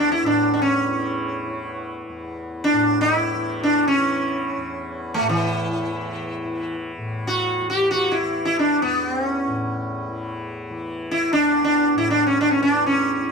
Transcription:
Already playing: tanpura E2 A2 E3
0.00 sitar D4
0.12 sitar E4
0.23 tanpura A2, sitar D4
0.54 sitar D4
0.62 sitar C#4
0.86 tanpura E3
1.47 tanpura E3
2.09 tanpura E2
2.64 sitar D4
2.73 tanpura A2
3.01 sitar E4
3.34 tanpura E3
3.63 sitar D4
3.88 sitar C#4
3.96 tanpura E3
4.58 tanpura E2
5.14 sitar A3
5.21 tanpura A2
5.29 sitar E3
5.83 tanpura E3
6.45 tanpura E3
6.98 tanpura A2
7.27 sitar F#4
7.61 tanpura E3
7.70 sitar G4
7.91 sitar F#4
8.12 sitar E4
8.22 tanpura E3
8.45 sitar E4
8.59 sitar D4
8.82 tanpura E2, sitar B3
9.06 sitar C4
9.25 sitar C#4
9.47 tanpura A2
10.08 tanpura E3
10.70 tanpura E3
11.11 sitar E4
11.33 tanpura E2, sitar D4
11.64 sitar D4
11.95 tanpura A2, sitar E4
12.10 sitar D4
12.27 sitar C#4
12.41 sitar D4
12.51 sitar C#4
12.58 tanpura E3
12.63 sitar D4
12.86 sitar C#4
13.19 tanpura E3

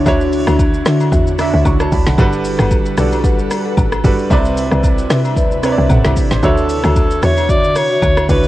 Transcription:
Already playing: grand piano D3 D4 E4 F#4 C#5 D5, ambient pad D3 D4 E4 F#4
0.06 log drum bass D2, grand piano D3 D4 E4 F#4 C#5, marimba F#4 C#5 E5, kick, high agogo, shaker
0.21 shaker
0.33 open hi-hat, shaker
0.47 log drum bass D2, marimba F#4 C#5 E5, cross-stick, high agogo, shaker
0.59 kick, low woodblock, shaker
0.74 shaker
0.86 log drum bass D3, marimba F#4 C#5 E5, cross-stick, snare, open hi-hat, shaker
1.00 high agogo, shaker
1.12 log drum bass E2, marimba F#4 C#5 E5, kick, shaker
1.27 shaker
1.39 grand piano D3 D4 E4 F#4 E5, cross-stick, open hi-hat, high agogo, shaker
1.53 log drum bass D2, marimba F#4 C#5 E5
1.65 log drum bass C#2, grand piano E5 C#6, kick, low woodblock, shaker
1.80 grand piano C#5 A5, cross-stick, high agogo, shaker
1.92 log drum bass D2, grand piano D5 B5, kick, open hi-hat, shaker
2.06 log drum bass B1, grand piano A4 F#5, snare, shaker
2.18 log drum bass G1, grand piano G3 D4 F#4 A4 B4, ambient pad G3 A4 B4, marimba A4 B4 F#5, kick, high agogo, shaker
2.33 shaker
2.45 open hi-hat, shaker
2.59 log drum bass G1, marimba A4 B4 F#5, cross-stick, high agogo, shaker
2.71 kick, low woodblock, shaker
2.86 shaker
2.98 log drum bass B1, grand piano G3 D4 F#4 A4 D5, marimba A4 B4 F#5, cross-stick, open hi-hat, shaker
3.12 high agogo, shaker
3.24 marimba A4 B4 F#5, kick, shaker
3.39 shaker
3.51 cross-stick, open hi-hat, high agogo, shaker
3.65 marimba A4 B4 F#5
3.77 log drum bass A1, kick, low woodblock, shaker
3.92 cross-stick, high agogo, shaker
4.04 log drum bass G1, grand piano G3 D4 F#4 A4 B4, kick, open hi-hat, shaker
4.19 shaker
4.30 log drum bass C2, grand piano C3 C4 E4 B4 D5, ambient pad C3 D4 E4 B4, marimba B4 D5 E5, kick, high agogo, shaker
4.45 shaker
4.57 open hi-hat, shaker
4.71 log drum bass C2, marimba B4 D5 E5, cross-stick, high agogo, shaker
4.84 kick, low woodblock, shaker
4.98 shaker
5.10 log drum bass C3, marimba B4 D5 E5, cross-stick, snare, open hi-hat, shaker
5.25 high agogo, shaker
5.37 log drum bass D2, marimba B4 D5 E5, kick, shaker
5.52 shaker
5.63 grand piano C3 C4 E4 B4 C#5, cross-stick, open hi-hat, high agogo, shaker
5.72 grand piano D5
5.78 log drum bass C2, marimba B4 D5 E5
5.90 log drum bass B1, grand piano A4 F#5, kick, mid tom, low woodblock, shaker
6.05 log drum bass C2, grand piano G4 E5, cross-stick, snare, high agogo, shaker
6.17 kick, open hi-hat, shaker
6.31 log drum bass A1, grand piano E4 C5, snare, shaker
6.43 log drum bass D2, grand piano D3 D4 E4 F#4 C#5, ambient pad D3 E4 F#4 C#5, marimba F#4 C#5 E5, alto saxophone A4, kick, high agogo, shaker
6.58 shaker
6.70 open hi-hat, shaker
6.84 log drum bass D2, marimba F#4 C#5 E5, cross-stick, high agogo, shaker
6.96 kick, low woodblock, shaker
7.11 shaker
7.23 log drum bass E2, grand piano D3 D4 E4 F#4 C#5, marimba F#4 C#5 E5, alto saxophone C#5, cross-stick, open hi-hat, shaker
7.37 high agogo, shaker
7.49 marimba F#4 C#5 E5, alto saxophone D5, kick, shaker
7.64 shaker
7.76 alto saxophone C#5, cross-stick, open hi-hat, high agogo, shaker
7.90 marimba F#4 E5
8.02 log drum bass D2, kick, low woodblock, shaker
8.17 cross-stick, high agogo, shaker
8.29 log drum bass C#2, grand piano D3 D4 E4 F#4 C#5, alto saxophone B4, kick, open hi-hat, shaker
8.44 shaker

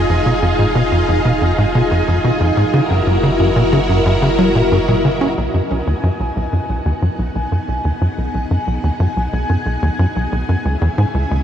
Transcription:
Already playing: sub bass F1, string machine D#4 F4 G#4, synth texture D#5
0.09 analog synth bass F2
0.26 analog synth bass B2
0.42 analog synth bass F2
0.59 analog synth bass G#2
0.75 analog synth bass B2
0.92 analog synth bass F2
1.08 analog synth bass F2
1.25 analog synth bass B2
1.41 analog synth bass F2
1.58 analog synth bass G#2
1.75 analog synth bass B2
1.91 analog synth bass F2
2.08 analog synth bass F2
2.24 analog synth bass B2
2.40 analog synth bass F2
2.57 analog synth bass G#2
2.73 sub bass F#1, analog synth bass C#3, string machine E4 F#4 A#4
2.90 analog synth bass F#2
3.07 analog synth bass F#2
3.23 analog synth bass C#3
3.40 analog synth bass F#2
3.56 analog synth bass A#2
3.73 analog synth bass C#3
3.89 analog synth bass F#2
4.06 analog synth bass F#2
4.22 analog synth bass C#3
4.38 analog synth bass F#3
4.55 analog synth bass A#2
4.71 analog synth bass F#2
4.88 analog synth bass A#2
5.05 analog synth bass C#3
5.21 analog synth bass C#4
5.37 analog synth bass B1, string machine B2 B3 D#4 F#4 F#5, synth texture G#5
5.54 analog synth bass F#2
5.71 analog synth bass B1
5.87 analog synth bass D#2
6.03 analog synth bass F#2
6.20 analog synth bass B1
6.36 analog synth bass B1
6.53 analog synth bass F#2
6.69 analog synth bass B1
6.85 analog synth bass D#2
7.02 analog synth bass F#2
7.19 analog synth bass B1
7.35 analog synth bass B1
7.52 analog synth bass F#2
7.68 analog synth bass B1
7.85 analog synth bass D#2
8.01 analog synth bass F#2, string machine G#4
8.18 analog synth bass B1
8.34 analog synth bass B1
8.51 analog synth bass F#2
8.67 analog synth bass B1
8.84 analog synth bass D#2
9.00 analog synth bass F#2
9.17 analog synth bass B1
9.33 analog synth bass B1
9.49 analog synth bass F#2
9.66 analog synth bass B1
9.82 analog synth bass D#2
9.99 analog synth bass F#2
10.16 analog synth bass B1
10.32 analog synth bass B1
10.49 analog synth bass F#2
10.65 analog synth bass C#2, string machine C#3 C#4 E4 G#5
10.81 analog synth bass E2
10.98 analog synth bass G#2
11.14 analog synth bass C#2
11.31 analog synth bass C#2

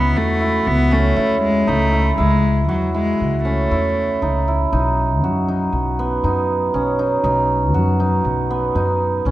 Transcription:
Already playing: upright bass C#2, cello B3, hammered dulcimer C#4 E4 F#4
0.16 upright bass E2, cello A3, hammered dulcimer F#4
0.41 hammered dulcimer E4
0.67 upright bass C#2, cello B3
0.91 cello A3, hammered dulcimer C#4
1.16 upright bass E2, hammered dulcimer E4
1.43 cello G#3
1.67 upright bass C#2, cello A3, hammered dulcimer D#4
1.93 hammered dulcimer E4
2.17 upright bass C#2, cello G#3, hammered dulcimer E4
2.69 upright bass E2, cello F#3, hammered dulcimer F#4
2.94 cello G#3, hammered dulcimer E4
3.20 upright bass C#2
3.45 cello A3, hammered dulcimer C#4
3.71 upright bass E2, hammered dulcimer E4
4.22 upright bass C#2, hammered dulcimer D#4
4.48 hammered dulcimer E4
4.73 upright bass B1, hammered dulcimer D#4
5.23 upright bass F#2, hammered dulcimer F#4
5.48 hammered dulcimer D#4
5.73 upright bass B1
5.99 hammered dulcimer B3
6.23 upright bass F#2, hammered dulcimer D#4
6.74 upright bass B1, hammered dulcimer C#4
6.99 hammered dulcimer D#4
7.24 upright bass B1, hammered dulcimer D#4
7.74 upright bass F#2, hammered dulcimer F#4
8.00 hammered dulcimer D#4
8.25 upright bass B1
8.50 hammered dulcimer B3
8.75 upright bass F#2, hammered dulcimer D#4
9.25 upright bass B1, hammered dulcimer C#4

